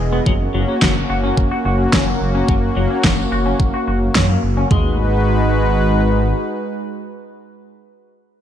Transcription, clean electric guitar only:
0, 0, Header, 1, 2, 480
1, 0, Start_track
1, 0, Key_signature, 5, "minor"
1, 0, Tempo, 555556
1, 227, Time_signature, 4, 2, 24, 8
1, 7269, End_track
2, 0, Start_track
2, 0, Title_t, "Clean electric guitar"
2, 0, Program_c, 0, 27
2, 107, Note_on_c, 0, 59, 94
2, 167, Note_off_c, 0, 59, 0
2, 229, Note_on_c, 0, 54, 79
2, 264, Note_off_c, 0, 54, 0
2, 469, Note_on_c, 0, 54, 68
2, 558, Note_off_c, 0, 54, 0
2, 589, Note_on_c, 0, 61, 67
2, 648, Note_off_c, 0, 61, 0
2, 709, Note_on_c, 0, 54, 77
2, 798, Note_off_c, 0, 54, 0
2, 949, Note_on_c, 0, 66, 69
2, 1008, Note_off_c, 0, 66, 0
2, 1068, Note_on_c, 0, 61, 93
2, 1157, Note_off_c, 0, 61, 0
2, 1309, Note_on_c, 0, 66, 68
2, 1368, Note_off_c, 0, 66, 0
2, 1429, Note_on_c, 0, 66, 71
2, 1518, Note_off_c, 0, 66, 0
2, 1669, Note_on_c, 0, 61, 78
2, 1758, Note_off_c, 0, 61, 0
2, 1788, Note_on_c, 0, 58, 67
2, 1877, Note_off_c, 0, 58, 0
2, 2029, Note_on_c, 0, 61, 92
2, 2088, Note_off_c, 0, 61, 0
2, 2149, Note_on_c, 0, 54, 75
2, 2184, Note_off_c, 0, 54, 0
2, 2389, Note_on_c, 0, 54, 68
2, 2478, Note_off_c, 0, 54, 0
2, 2509, Note_on_c, 0, 61, 67
2, 2568, Note_off_c, 0, 61, 0
2, 2629, Note_on_c, 0, 54, 77
2, 2718, Note_off_c, 0, 54, 0
2, 2869, Note_on_c, 0, 66, 67
2, 2928, Note_off_c, 0, 66, 0
2, 2987, Note_on_c, 0, 61, 88
2, 3077, Note_off_c, 0, 61, 0
2, 3230, Note_on_c, 0, 66, 67
2, 3288, Note_off_c, 0, 66, 0
2, 3348, Note_on_c, 0, 66, 70
2, 3438, Note_off_c, 0, 66, 0
2, 3587, Note_on_c, 0, 61, 74
2, 3677, Note_off_c, 0, 61, 0
2, 3708, Note_on_c, 0, 58, 64
2, 3797, Note_off_c, 0, 58, 0
2, 3949, Note_on_c, 0, 61, 88
2, 4008, Note_off_c, 0, 61, 0
2, 4067, Note_on_c, 0, 56, 84
2, 4290, Note_off_c, 0, 56, 0
2, 7269, End_track
0, 0, End_of_file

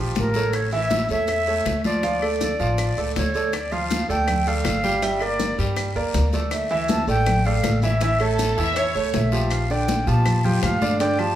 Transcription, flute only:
0, 0, Header, 1, 2, 480
1, 0, Start_track
1, 0, Key_signature, -1, "minor"
1, 0, Tempo, 374065
1, 685, Time_signature, 4, 2, 24, 8
1, 14569, End_track
2, 0, Start_track
2, 0, Title_t, "Flute"
2, 0, Program_c, 0, 73
2, 238, Note_on_c, 0, 70, 86
2, 704, Note_on_c, 0, 73, 81
2, 723, Note_off_c, 0, 70, 0
2, 935, Note_off_c, 0, 73, 0
2, 955, Note_on_c, 0, 76, 114
2, 1389, Note_off_c, 0, 76, 0
2, 1435, Note_on_c, 0, 76, 105
2, 2332, Note_off_c, 0, 76, 0
2, 2382, Note_on_c, 0, 74, 101
2, 4005, Note_off_c, 0, 74, 0
2, 4067, Note_on_c, 0, 73, 80
2, 4537, Note_on_c, 0, 74, 84
2, 4556, Note_off_c, 0, 73, 0
2, 4773, Note_on_c, 0, 77, 90
2, 4792, Note_off_c, 0, 74, 0
2, 5252, Note_off_c, 0, 77, 0
2, 5260, Note_on_c, 0, 79, 103
2, 5746, Note_on_c, 0, 77, 96
2, 5766, Note_off_c, 0, 79, 0
2, 6456, Note_on_c, 0, 76, 83
2, 6475, Note_off_c, 0, 77, 0
2, 6705, Note_on_c, 0, 74, 84
2, 6724, Note_off_c, 0, 76, 0
2, 7177, Note_off_c, 0, 74, 0
2, 8368, Note_on_c, 0, 76, 81
2, 8814, Note_off_c, 0, 76, 0
2, 8836, Note_on_c, 0, 81, 109
2, 9065, Note_off_c, 0, 81, 0
2, 9101, Note_on_c, 0, 79, 110
2, 9572, Note_on_c, 0, 77, 97
2, 9591, Note_off_c, 0, 79, 0
2, 10039, Note_off_c, 0, 77, 0
2, 10046, Note_on_c, 0, 76, 90
2, 10955, Note_off_c, 0, 76, 0
2, 11737, Note_on_c, 0, 76, 77
2, 12206, Note_on_c, 0, 77, 75
2, 12225, Note_off_c, 0, 76, 0
2, 12458, Note_on_c, 0, 79, 94
2, 12477, Note_off_c, 0, 77, 0
2, 12935, Note_on_c, 0, 81, 98
2, 12954, Note_off_c, 0, 79, 0
2, 13402, Note_on_c, 0, 79, 94
2, 13421, Note_off_c, 0, 81, 0
2, 13641, Note_off_c, 0, 79, 0
2, 13649, Note_on_c, 0, 77, 94
2, 14095, Note_off_c, 0, 77, 0
2, 14108, Note_on_c, 0, 79, 96
2, 14361, Note_on_c, 0, 81, 106
2, 14380, Note_off_c, 0, 79, 0
2, 14569, Note_off_c, 0, 81, 0
2, 14569, End_track
0, 0, End_of_file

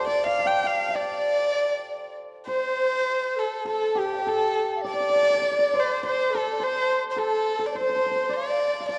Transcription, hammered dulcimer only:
0, 0, Header, 1, 2, 480
1, 0, Start_track
1, 0, Tempo, 595829
1, 67, Time_signature, 4, 2, 24, 8
1, 3428, Tempo, 579151
1, 7348, End_track
2, 0, Start_track
2, 0, Title_t, "Hammered dulcimer"
2, 0, Program_c, 0, 15
2, 0, Note_on_c, 0, 65, 63
2, 0, Note_on_c, 0, 67, 47
2, 0, Note_on_c, 0, 69, 62
2, 0, Note_on_c, 0, 72, 72
2, 56, Note_on_c, 0, 74, 77
2, 208, Note_on_c, 0, 77, 73
2, 310, Note_on_c, 0, 81, 58
2, 365, Note_on_c, 0, 79, 72
2, 510, Note_off_c, 0, 77, 0
2, 513, Note_on_c, 0, 77, 72
2, 710, Note_off_c, 0, 77, 0
2, 713, Note_on_c, 0, 77, 51
2, 762, Note_off_c, 0, 74, 0
2, 765, Note_on_c, 0, 74, 66
2, 1771, Note_off_c, 0, 67, 0
2, 1866, Note_off_c, 0, 81, 0
2, 1988, Note_off_c, 0, 72, 0
2, 1991, Note_on_c, 0, 72, 72
2, 1999, Note_off_c, 0, 65, 0
2, 2033, Note_off_c, 0, 69, 0
2, 2034, Note_off_c, 0, 79, 0
2, 2504, Note_off_c, 0, 77, 0
2, 2749, Note_off_c, 0, 74, 0
2, 2941, Note_on_c, 0, 69, 70
2, 3183, Note_on_c, 0, 67, 68
2, 3433, Note_off_c, 0, 69, 0
2, 3436, Note_on_c, 0, 69, 70
2, 3915, Note_on_c, 0, 74, 79
2, 3988, Note_off_c, 0, 74, 0
2, 3992, Note_on_c, 0, 74, 59
2, 4044, Note_off_c, 0, 74, 0
2, 4047, Note_on_c, 0, 74, 60
2, 4120, Note_off_c, 0, 74, 0
2, 4124, Note_on_c, 0, 74, 52
2, 4140, Note_off_c, 0, 72, 0
2, 4170, Note_off_c, 0, 74, 0
2, 4173, Note_on_c, 0, 74, 56
2, 4227, Note_off_c, 0, 74, 0
2, 4231, Note_on_c, 0, 74, 51
2, 4291, Note_off_c, 0, 74, 0
2, 4294, Note_on_c, 0, 74, 53
2, 4327, Note_off_c, 0, 74, 0
2, 4330, Note_on_c, 0, 74, 52
2, 4386, Note_off_c, 0, 74, 0
2, 4389, Note_on_c, 0, 74, 62
2, 4466, Note_off_c, 0, 74, 0
2, 4469, Note_on_c, 0, 74, 56
2, 4528, Note_off_c, 0, 74, 0
2, 4531, Note_on_c, 0, 74, 70
2, 4654, Note_on_c, 0, 72, 76
2, 4895, Note_off_c, 0, 72, 0
2, 4898, Note_on_c, 0, 72, 80
2, 5156, Note_off_c, 0, 69, 0
2, 5159, Note_on_c, 0, 69, 73
2, 5364, Note_off_c, 0, 72, 0
2, 5368, Note_on_c, 0, 72, 76
2, 5779, Note_off_c, 0, 67, 0
2, 5835, Note_off_c, 0, 69, 0
2, 5838, Note_on_c, 0, 69, 74
2, 6188, Note_off_c, 0, 69, 0
2, 6192, Note_on_c, 0, 69, 64
2, 6320, Note_off_c, 0, 72, 0
2, 6323, Note_on_c, 0, 72, 73
2, 6368, Note_off_c, 0, 72, 0
2, 6371, Note_on_c, 0, 72, 54
2, 6438, Note_off_c, 0, 72, 0
2, 6442, Note_on_c, 0, 72, 61
2, 6494, Note_off_c, 0, 72, 0
2, 6498, Note_on_c, 0, 72, 58
2, 6572, Note_off_c, 0, 74, 0
2, 6578, Note_off_c, 0, 72, 0
2, 6581, Note_on_c, 0, 72, 63
2, 6621, Note_off_c, 0, 72, 0
2, 6624, Note_on_c, 0, 72, 57
2, 6655, Note_off_c, 0, 72, 0
2, 6659, Note_on_c, 0, 72, 66
2, 6772, Note_on_c, 0, 74, 77
2, 7196, Note_on_c, 0, 77, 53
2, 7262, Note_off_c, 0, 74, 0
2, 7266, Note_on_c, 0, 74, 71
2, 7348, Note_off_c, 0, 69, 0
2, 7348, Note_off_c, 0, 72, 0
2, 7348, Note_off_c, 0, 74, 0
2, 7348, Note_off_c, 0, 77, 0
2, 7348, End_track
0, 0, End_of_file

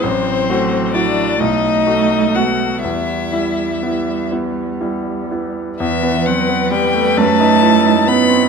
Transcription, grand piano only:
0, 0, Header, 1, 2, 480
1, 0, Start_track
1, 0, Key_signature, 1, "minor"
1, 0, Tempo, 920245
1, 16, Time_signature, 6, 3, 24, 8
1, 976, Tempo, 983607
1, 2896, Tempo, 909091
1, 4311, End_track
2, 0, Start_track
2, 0, Title_t, "Grand piano"
2, 0, Program_c, 0, 0
2, 0, Control_c, 0, 64, 127
2, 20, Note_on_c, 0, 33, 58
2, 27, Control_c, 0, 64, 0
2, 106, Control_c, 0, 64, 127
2, 259, Note_on_c, 0, 57, 41
2, 262, Note_on_c, 0, 66, 48
2, 474, Note_off_c, 0, 57, 0
2, 476, Note_off_c, 0, 66, 0
2, 494, Note_on_c, 0, 64, 42
2, 496, Note_on_c, 0, 66, 43
2, 712, Note_off_c, 0, 64, 0
2, 713, Note_off_c, 0, 33, 0
2, 713, Note_off_c, 0, 66, 0
2, 732, Note_on_c, 0, 35, 52
2, 742, Control_c, 0, 64, 0
2, 816, Control_c, 0, 64, 127
2, 974, Note_on_c, 0, 57, 36
2, 978, Note_on_c, 0, 66, 38
2, 1190, Note_off_c, 0, 57, 0
2, 1192, Note_off_c, 0, 66, 0
2, 1211, Note_on_c, 0, 59, 34
2, 1213, Note_on_c, 0, 66, 35
2, 1430, Note_off_c, 0, 35, 0
2, 1431, Note_off_c, 0, 59, 0
2, 1432, Note_off_c, 0, 66, 0
2, 1449, Note_on_c, 0, 40, 39
2, 1459, Control_c, 0, 64, 0
2, 1533, Control_c, 0, 64, 127
2, 1686, Note_on_c, 0, 55, 30
2, 1688, Note_on_c, 0, 64, 32
2, 1911, Note_off_c, 0, 55, 0
2, 1912, Note_off_c, 0, 64, 0
2, 1930, Note_on_c, 0, 59, 29
2, 1932, Note_on_c, 0, 64, 30
2, 2152, Note_off_c, 0, 59, 0
2, 2153, Note_off_c, 0, 64, 0
2, 2170, Note_on_c, 0, 59, 29
2, 2172, Note_on_c, 0, 64, 34
2, 2394, Note_off_c, 0, 59, 0
2, 2394, Note_off_c, 0, 64, 0
2, 2409, Note_on_c, 0, 55, 29
2, 2410, Note_on_c, 0, 64, 33
2, 2637, Note_off_c, 0, 55, 0
2, 2638, Note_off_c, 0, 64, 0
2, 2655, Note_on_c, 0, 59, 32
2, 2657, Note_on_c, 0, 64, 33
2, 2875, Note_off_c, 0, 59, 0
2, 2876, Note_off_c, 0, 40, 0
2, 2876, Note_off_c, 0, 64, 0
2, 2894, Note_on_c, 0, 40, 57
2, 2906, Control_c, 0, 64, 0
2, 2984, Control_c, 0, 64, 127
2, 3014, Note_on_c, 0, 59, 49
2, 3138, Note_on_c, 0, 60, 41
2, 3213, Note_off_c, 0, 59, 0
2, 3255, Note_on_c, 0, 59, 48
2, 3262, Note_off_c, 0, 60, 0
2, 3375, Note_on_c, 0, 55, 51
2, 3451, Note_off_c, 0, 59, 0
2, 3497, Note_on_c, 0, 57, 44
2, 3571, Note_off_c, 0, 55, 0
2, 3601, Note_off_c, 0, 40, 0
2, 3618, Note_on_c, 0, 42, 61
2, 3620, Note_off_c, 0, 57, 0
2, 3633, Control_c, 0, 64, 0
2, 3722, Control_c, 0, 64, 127
2, 3737, Note_on_c, 0, 63, 53
2, 3855, Note_on_c, 0, 64, 46
2, 3932, Note_off_c, 0, 63, 0
2, 3977, Note_on_c, 0, 63, 50
2, 3978, Note_off_c, 0, 64, 0
2, 4092, Note_on_c, 0, 59, 53
2, 4168, Note_off_c, 0, 63, 0
2, 4209, Note_on_c, 0, 60, 44
2, 4284, Note_off_c, 0, 59, 0
2, 4311, Note_off_c, 0, 42, 0
2, 4311, Note_off_c, 0, 60, 0
2, 4311, End_track
0, 0, End_of_file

